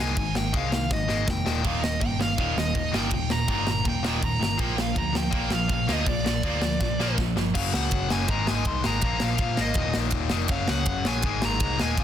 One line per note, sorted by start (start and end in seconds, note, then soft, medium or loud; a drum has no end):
0.00 0.15 C2 loud
0.00 0.15 G#2 medium
0.00 0.15 D#3 loud
0.00 0.15 G#3 loud
0.00 0.36 G#5 loud
0.16 0.50 G#1 loud
0.16 0.33 G#2 medium
0.16 0.33 D#3 medium
0.16 kick loud
0.16 crash medium
0.35 0.51 G#2 medium
0.35 0.52 D#3 medium
0.35 0.55 G5 medium
0.35 snare loud
0.53 0.86 C2 medium
0.53 0.70 G#2 loud
0.53 0.71 D#3 medium
0.53 0.71 G#3 loud
0.53 0.89 F5 medium
0.53 kick loud
0.53 crash medium
0.72 0.89 G#2 medium
0.72 0.89 D#3 medium
0.72 snare loud
0.91 1.07 G#1 loud
0.91 1.07 G#2 medium
0.91 1.07 D#3 medium
0.91 1.26 D#5 medium
0.91 kick loud
0.91 snare medium
1.08 1.26 G#1 medium
1.08 1.25 G#2 medium
1.08 1.26 D#3 loud
1.08 1.26 G#3 loud
1.08 snare medium
1.26 1.44 F1 medium
1.26 1.43 G#2 medium
1.26 1.44 D#3 medium
1.26 kick loud
1.26 snare medium
1.30 1.63 G5 medium
1.45 1.62 D#1 medium
1.45 1.62 D#2 medium
1.45 1.62 A#2 loud
1.45 1.63 D#3 loud
1.45 snare medium
1.63 1.97 D#1 medium
1.63 1.80 D#2 medium
1.63 1.81 A#2 loud
1.63 1.82 D#3 loud
1.63 1.83 F5 loud
1.63 kick loud
1.63 crash medium
1.81 1.98 D#2 medium
1.81 1.99 A#2 medium
1.81 2.02 D#5 medium
1.81 snare loud
2.00 2.34 G1 loud
2.00 2.17 D#2 medium
2.00 2.17 A#2 medium
2.00 2.18 G5 loud
2.00 kick loud
2.00 crash medium
2.19 2.36 D#2 medium
2.19 2.36 A#2 medium
2.19 2.59 F5 loud
2.19 snare loud
2.38 2.54 D#1 medium
2.38 2.55 D#2 medium
2.38 2.56 A#2 medium
2.38 2.56 D#3 loud
2.38 kick loud
2.38 crash medium
2.56 2.73 D#1 medium
2.56 2.73 D#2 medium
2.56 2.73 A#2 medium
2.56 2.96 D#5 loud
2.56 snare loud
2.75 2.91 D#1 loud
2.75 2.90 D#2 medium
2.75 2.91 A#2 medium
2.75 kick loud
2.75 crash medium
2.91 3.09 G1 medium
2.91 3.10 D#2 loud
2.91 3.10 A#2 loud
2.91 3.10 D#3 loud
2.91 snare loud
2.96 3.12 G5 medium
3.10 3.44 D#1 medium
3.10 3.28 D#2 medium
3.10 3.28 A#2 loud
3.10 3.31 G5 loud
3.10 kick loud
3.10 crash medium
3.30 3.47 D#2 medium
3.30 3.47 A#2 medium
3.30 3.69 A#5 loud
3.30 snare loud
3.48 3.81 G1 loud
3.48 3.65 D#2 medium
3.48 3.65 A#2 medium
3.48 3.66 D#3 medium
3.48 kick loud
3.48 crash medium
3.66 3.83 D#2 medium
3.66 3.83 A#2 medium
3.66 snare loud
3.71 3.88 A#5 loud
3.84 4.02 D#1 medium
3.84 4.02 D#2 medium
3.84 4.02 A#2 medium
3.84 4.24 G5 loud
3.84 kick loud
3.84 crash medium
4.03 4.20 D#1 medium
4.03 4.20 D#2 loud
4.03 4.20 A#2 loud
4.03 4.21 D#3 loud
4.03 snare loud
4.21 4.39 D#1 medium
4.21 4.38 D#2 medium
4.21 4.39 A#2 medium
4.21 4.61 A#5 loud
4.21 kick loud
4.21 crash medium
4.39 4.57 G1 medium
4.39 4.57 D#2 medium
4.39 4.56 A#2 medium
4.39 snare loud
4.57 4.92 A#1 loud
4.57 4.75 A#2 loud
4.57 4.76 F3 loud
4.57 4.77 A#3 loud
4.57 4.78 G5 loud
4.57 kick loud
4.57 crash medium
4.77 4.93 A#2 medium
4.77 4.94 F3 medium
4.77 snare loud
4.81 4.98 F5 medium
4.94 5.29 D2 medium
4.94 5.12 A#2 medium
4.94 5.12 F3 medium
4.94 5.16 A#5 loud
4.94 kick loud
4.94 crash medium
5.13 5.29 A#2 medium
5.13 5.30 F3 medium
5.13 5.54 G5 loud
5.13 snare loud
5.30 5.49 A#1 loud
5.30 5.48 A#2 loud
5.30 5.48 F3 medium
5.30 5.50 A#3 loud
5.30 kick loud
5.30 crash medium
5.49 5.68 A#1 medium
5.49 5.67 A#2 medium
5.49 5.67 F3 medium
5.49 5.71 F5 loud
5.49 snare loud
5.68 5.87 A#1 medium
5.68 5.86 A#2 medium
5.68 5.86 F3 medium
5.68 kick loud
5.68 crash medium
5.73 5.91 F5 medium
5.87 6.05 D2 medium
5.87 6.05 A#2 loud
5.87 6.05 F3 loud
5.87 6.06 A#3 loud
5.87 snare loud
5.93 6.08 D#5 medium
6.06 6.40 A#1 loud
6.06 6.23 A#2 medium
6.06 6.23 F3 medium
6.06 7.15 D5 medium
6.06 kick loud
6.06 crash medium
6.24 6.42 A#2 medium
6.24 6.42 F3 medium
6.24 snare loud
6.43 6.77 D2 loud
6.43 6.61 A#2 medium
6.43 6.61 F3 medium
6.43 6.62 A#3 loud
6.43 kick loud
6.43 crash medium
6.62 6.79 A#2 medium
6.62 6.79 F3 medium
6.62 snare loud
6.80 6.97 A#1 medium
6.80 6.97 A#2 medium
6.80 6.97 F3 medium
6.80 kick loud
6.80 snare medium
6.99 7.15 A#1 medium
6.99 7.17 A#2 medium
6.99 7.17 F3 loud
6.99 7.17 A#3 loud
6.99 snare medium
7.18 7.34 A#1 medium
7.18 7.35 A#2 medium
7.18 7.35 F3 medium
7.18 kick loud
7.18 snare medium
7.36 7.53 G1 medium
7.36 7.53 A#2 medium
7.36 7.53 F3 medium
7.36 snare medium
7.54 7.72 F#1 loud
7.54 8.09 F#2 loud
7.54 8.10 C#3 loud
7.54 8.08 F#3 loud
7.54 7.72 F5 medium
7.54 kick loud
7.54 crash loud
7.73 7.90 C#2 medium
7.73 8.12 F#5 medium
7.73 snare loud
7.91 8.08 F#1 loud
7.91 kick loud
7.91 ride medium
8.09 8.28 F#1 medium
8.09 8.29 F#2 medium
8.09 8.27 C#3 medium
8.09 8.27 F#3 medium
8.09 8.30 G#5 loud
8.09 snare loud
8.27 8.45 G#1 medium
8.27 8.82 G#2 loud
8.27 8.83 D#3 loud
8.27 8.82 G#3 loud
8.27 8.48 A#5 loud
8.27 kick loud
8.27 ride medium
8.47 8.65 G#1 medium
8.47 8.65 G#5 loud
8.47 snare loud
8.65 8.82 C2 loud
8.65 8.86 C6 loud
8.65 kick loud
8.65 ride medium
8.83 9.01 G#1 medium
8.83 9.01 G#2 medium
8.83 9.02 D#3 medium
8.83 9.01 G#3 medium
8.83 9.23 A#5 loud
8.83 snare loud
9.01 9.19 A#1 loud
9.01 9.56 A#2 loud
9.01 9.57 F3 loud
9.01 9.56 A#3 loud
9.01 kick loud
9.01 ride medium
9.20 9.38 A#1 loud
9.20 9.60 F5 loud
9.20 snare loud
9.38 9.56 A#2 loud
9.38 kick loud
9.38 ride medium
9.57 9.74 G#1 loud
9.57 9.75 A#2 medium
9.57 9.76 F3 medium
9.57 9.75 A#3 loud
9.57 snare loud
9.61 9.94 D#5 medium
9.74 9.93 D#1 loud
9.74 10.30 D#2 medium
9.74 10.30 A#2 loud
9.74 kick loud
9.74 ride medium
9.78 10.29 D#3 loud
9.94 10.12 A#1 medium
9.94 snare loud
10.11 10.29 D#1 loud
10.11 kick loud
10.11 ride medium
10.30 10.49 F1 medium
10.30 10.47 D#2 medium
10.30 10.49 A#2 medium
10.30 10.48 D#3 medium
10.30 snare loud
10.48 10.66 F#1 loud
10.48 11.03 F#2 loud
10.48 11.04 C#3 loud
10.48 11.04 F#3 loud
10.48 10.69 F5 loud
10.48 kick loud
10.48 ride medium
10.68 10.86 C#2 medium
10.68 11.06 F#5 medium
10.68 snare loud
10.86 11.04 F#1 medium
10.86 kick loud
10.86 ride medium
11.05 11.23 A#1 medium
11.05 11.24 F#2 medium
11.05 11.22 C#3 medium
11.05 11.23 F#3 medium
11.05 11.45 G#5 loud
11.05 snare loud
11.22 11.41 G#1 loud
11.22 11.77 G#2 loud
11.22 11.78 D#3 loud
11.22 11.77 G#3 loud
11.22 kick loud
11.22 ride medium
11.42 11.59 G#1 medium
11.42 11.82 A#5 loud
11.42 snare loud
11.60 11.77 C2 loud
11.60 kick loud
11.60 ride medium
11.79 11.97 D#1 medium
11.79 11.96 G#2 medium
11.79 11.97 D#3 medium
11.79 11.96 G#3 medium
11.79 12.04 G#5 loud
11.79 snare loud
11.97 12.04 A#1 loud
11.97 12.04 A#2 loud
11.97 12.04 F3 loud
11.97 12.04 A#3 loud
11.97 kick loud
11.97 ride medium